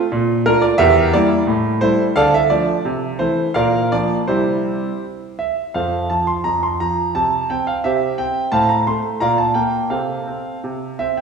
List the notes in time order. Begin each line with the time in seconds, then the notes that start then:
0.12 A#2
0.46 A3 D4 F4 A#4
0.62 D5
0.78 E2 G4 A#4 E5
1.13 G3 A#3 E4 D5
1.47 A2
1.81 G3 A3 E4 C5
2.16 D3 A4 D5 F5
2.34 E5
2.50 F3 A3 D4 D5
2.85 C3
3.19 E3 A3 E4 C5
3.54 A#2 A#4 D5 F5
3.92 F3 A#3 D4 D5
4.28 C3 G3 C4 E4 G4 C5
5.39 E5
5.74 F2 A4 C5 F5
6.10 F3 A5
6.27 C6
6.44 F2 A#5
6.63 C6
6.80 F3 A#5
7.15 C3 A5
7.50 C4 G5
7.67 F5
7.84 C3 G4 C5 E5
8.18 C4 G5
8.52 A2 C5 F5 A5
8.69 A#5
8.87 A3 C6
9.20 A#2 D5 F5 A#5
9.38 A5
9.54 A#3 G5
9.90 C3 A4 C5 F5
10.27 C4
10.64 C3
10.99 C4 E5
11.17 G5